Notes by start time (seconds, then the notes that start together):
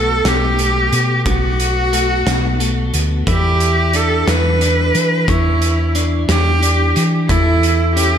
Already playing: B1 B2 A3 A4 B4 D5 F#5 A5
0.25 B1 B2 G4, snare, closed hi-hat
0.59 A3, closed hi-hat
0.92 B2, closed hi-hat
1.26 B1 B2 F#4, kick, closed hi-hat
1.60 closed hi-hat
1.93 A3, closed hi-hat
2.26 B1 B2, snare, closed hi-hat
2.60 A3, closed hi-hat
2.93 D2 B2, closed hi-hat
3.27 E2 E3 E4 G4 D5 E5, kick, closed hi-hat
3.60 closed hi-hat
3.93 D4 A4, closed hi-hat
4.27 E2 E3 B4, snare, closed hi-hat
4.61 D4, closed hi-hat
4.95 E3, closed hi-hat
5.28 E2 E3 E4 C#5, kick, closed hi-hat
5.62 closed hi-hat
5.95 D4, closed hi-hat
6.29 E2 E3 G4, snare, closed hi-hat
6.63 D4, closed hi-hat
6.96 E3, closed hi-hat
7.29 E2 E3 E4 A4, kick, closed hi-hat
7.63 closed hi-hat
7.96 C#4 G4, closed hi-hat